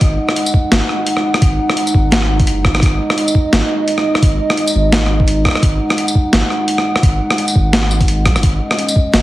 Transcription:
0.00 0.18 G#1 loud
0.00 9.22 G#3 medium
0.00 8.40 D#4 medium
0.00 2.81 F#5 medium
0.00 kick loud
0.00 closed hi-hat medium
0.29 cross-stick medium
0.36 closed hi-hat medium
0.46 tambourine medium
0.54 kick medium
0.72 0.81 G#1 medium
0.72 snare loud
0.72 closed hi-hat medium
0.89 cross-stick soft
1.06 closed hi-hat medium
1.17 cross-stick soft
1.34 cross-stick medium
1.42 1.58 G#1 loud
1.42 kick loud
1.42 closed hi-hat medium
1.70 cross-stick medium
1.77 closed hi-hat medium
1.87 tambourine medium
1.94 2.49 G#1 medium
1.94 kick medium
2.12 snare loud
2.12 closed hi-hat medium
2.22 cross-stick soft
2.40 kick loud
2.40 closed hi-hat soft
2.47 2.66 F#1 loud
2.47 closed hi-hat medium
2.65 2.81 G#1 medium
2.65 kick medium
2.65 cross-stick medium
2.75 cross-stick medium
2.80 2.99 G#1 loud
2.80 5.62 D#5 medium
2.80 kick loud
2.80 cross-stick medium
2.80 closed hi-hat medium
2.86 cross-stick soft
3.10 cross-stick medium
3.18 closed hi-hat medium
3.28 tambourine medium
3.35 kick medium
3.53 3.62 G#1 medium
3.53 snare loud
3.53 closed hi-hat medium
3.88 closed hi-hat medium
3.98 cross-stick soft
4.15 cross-stick medium
4.22 4.39 G#1 loud
4.22 kick loud
4.22 closed hi-hat medium
4.50 cross-stick medium
4.57 closed hi-hat medium
4.67 tambourine medium
4.75 5.44 G#1 loud
4.92 snare loud
4.92 closed hi-hat medium
5.06 cross-stick soft
5.20 kick loud
5.28 closed hi-hat medium
5.45 kick medium
5.45 cross-stick medium
5.48 cross-stick medium
5.51 cross-stick soft
5.55 cross-stick medium
5.57 cross-stick soft
5.60 5.79 G#1 loud
5.60 8.43 F#5 medium
5.60 kick loud
5.60 cross-stick soft
5.60 closed hi-hat medium
5.90 cross-stick medium
5.98 closed hi-hat medium
6.08 tambourine medium
6.15 kick medium
6.33 6.42 G#1 medium
6.33 snare loud
6.33 closed hi-hat medium
6.50 cross-stick soft
6.68 closed hi-hat medium
6.78 cross-stick medium
6.96 cross-stick medium
7.03 7.19 G#1 loud
7.03 kick loud
7.03 closed hi-hat medium
7.30 cross-stick medium
7.38 closed hi-hat medium
7.48 tambourine medium
7.56 8.27 G#1 medium
7.56 kick medium
7.73 snare loud
7.73 closed hi-hat medium
7.83 cross-stick soft
7.91 tambourine soft
8.01 kick loud
8.01 closed hi-hat soft
8.08 closed hi-hat medium
8.26 8.37 B1 medium
8.26 kick medium
8.26 cross-stick medium
8.26 closed hi-hat soft
8.36 8.43 F#1 medium
8.36 cross-stick medium
8.36 tambourine soft
8.43 8.60 G#1 loud
8.43 9.22 C#4 medium
8.43 9.22 D#5 medium
8.43 kick loud
8.43 closed hi-hat medium
8.71 cross-stick medium
8.79 closed hi-hat medium
8.88 tambourine medium
8.96 kick medium
9.14 9.22 G#1 medium
9.14 snare loud
9.14 closed hi-hat medium

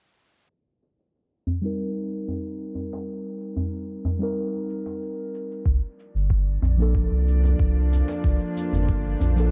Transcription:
0.50 shaker soft
0.82 shaker medium
0.99 shaker soft
1.15 shaker soft
1.47 djembe bass medium
1.47 shaker medium
1.61 4.16 G3 medium
1.61 4.17 C4 medium
1.61 4.18 D#4 medium
1.61 shaker soft
1.65 4.18 A#4 medium
1.79 shaker soft
2.11 shaker medium
2.28 djembe tone medium
2.28 shaker soft
2.44 shaker soft
2.75 djembe tone medium
2.75 shaker medium
2.93 djembe slap medium
2.93 shaker soft
3.08 shaker soft
3.40 shaker medium
3.56 djembe bass medium
3.56 shaker soft
3.73 shaker soft
4.05 djembe tone medium
4.05 djembe bass medium
4.05 shaker medium
4.19 5.63 G3 medium
4.19 5.63 C4 medium
4.19 5.64 D#4 medium
4.19 djembe slap soft
4.19 shaker soft
4.23 5.65 A#4 medium
4.37 shaker soft
4.69 shaker medium
4.86 djembe slap soft
4.86 shaker soft
5.02 shaker soft
5.34 shaker medium
5.51 shaker soft
5.65 5.79 C2 medium
5.65 9.51 F3 medium
5.65 9.51 A#3 medium
5.65 9.51 D4 medium
5.65 9.51 F4 medium
5.65 8.21 D5 medium
5.65 kick loud
5.65 shaker soft
5.99 shaker medium
6.15 6.57 G1 medium
6.15 shaker soft
6.30 kick loud
6.30 shaker soft
6.62 7.05 A#1 loud
6.62 djembe bass medium
6.62 shaker medium
6.77 9.32 F3 medium
6.77 9.33 A#3 medium
6.77 9.34 D4 medium
6.77 shaker soft
6.82 9.35 A4 medium
6.95 kick medium
6.95 shaker soft
7.11 7.54 C2 medium
7.28 shaker medium
7.44 djembe tone medium
7.44 shaker soft
7.59 8.03 C2 medium
7.59 kick loud
7.59 shaker soft
7.92 djembe tone medium
7.92 shaker medium
8.08 djembe slap medium
8.08 shaker soft
8.24 8.37 C2 medium
8.24 9.51 C5 medium
8.24 kick loud
8.24 shaker soft
8.56 djembe tone soft
8.56 shaker medium
8.73 9.15 G1 medium
8.73 djembe bass medium
8.73 shaker soft
8.89 kick loud
8.89 shaker soft
9.20 9.51 A#1 medium
9.20 djembe tone medium
9.20 djembe bass medium
9.20 shaker medium
9.36 9.51 F3 medium
9.36 9.51 A#3 medium
9.36 9.51 D4 medium
9.36 9.51 A4 medium
9.36 djembe slap soft
9.36 shaker soft

